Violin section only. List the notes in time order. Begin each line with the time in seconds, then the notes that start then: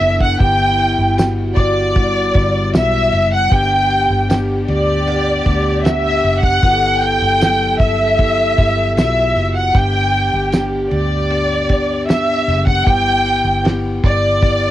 Already playing: E5
0.22 F#5
0.41 G5
1.56 D5
2.76 E5
3.34 F#5
3.53 G5
4.70 D5
5.85 E5
6.43 F#5
7.02 G5
7.80 E5
8.98 E5
9.57 F#5
9.77 G5
10.91 D5
12.09 E5
12.69 F#5
12.89 G5
14.05 D5